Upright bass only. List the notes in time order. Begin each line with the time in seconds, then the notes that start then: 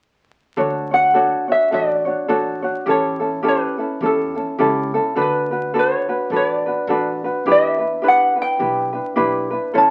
0.57 D2
1.72 A1
2.29 A1
2.87 A1
4.01 E2
4.59 C#2
5.16 D2
6.30 A1
6.87 A1
7.46 E2
8.60 B1
9.17 B1
9.75 A1